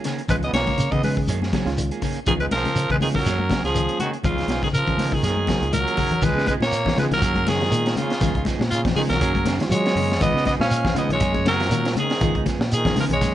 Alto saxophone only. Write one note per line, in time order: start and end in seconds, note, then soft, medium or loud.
0.30 0.36 B4 loud
0.44 0.53 D#5 loud
0.54 0.93 C#5 loud
0.92 1.03 D#5 medium
1.04 1.15 B4 medium
2.28 2.33 G#4 loud
2.40 2.45 B4 loud
2.52 2.87 A#4 loud
2.92 2.96 B4 loud
3.02 3.08 G#4 medium
3.16 3.61 A#4 medium
3.65 3.98 G#4 medium
4.00 4.11 F#4 medium
4.26 4.61 F4 medium
4.64 4.69 G#4 medium
4.74 5.15 A#4 loud
5.14 5.24 G#4 medium
5.24 5.70 G#4 medium
5.74 6.26 A#4 loud
6.25 6.47 B4 loud
6.48 6.54 B4 medium
6.63 6.95 C#5 loud
6.99 7.05 B4 medium
7.14 7.50 A#4 loud
7.48 7.97 G#4 loud
7.98 8.43 F4 medium
8.71 8.82 F4 medium
8.96 9.02 G#4 medium
9.10 9.56 A#4 medium
9.72 10.18 C#5 loud
10.23 10.45 D#5 loud
10.47 10.53 D#5 loud
10.61 10.94 F5 loud
10.98 11.10 D#5 medium
11.13 11.45 C#5 loud
11.48 11.94 A#4 loud
12.00 12.45 G#4 medium
12.73 12.96 G#4 medium
13.00 13.06 A#4 medium
13.13 13.34 C#5 medium